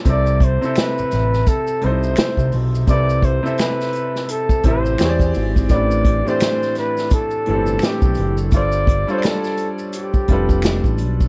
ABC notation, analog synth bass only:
X:1
M:4/4
L:1/16
Q:"Swing 16ths" 1/4=85
K:C
V:1 name="Analog synth bass" clef=bass
C,,3 z2 A,,, A,,,2 z2 C,,2 z C,, B,,,2 | C,,3 z6 z A,,,2 E,, E,, ^G,,,2 | A,,,3 z6 z G,,,2 z B,,, ^F,,,2 | G,,,3 z6 z F,,,3 A,,, B,,,2 |]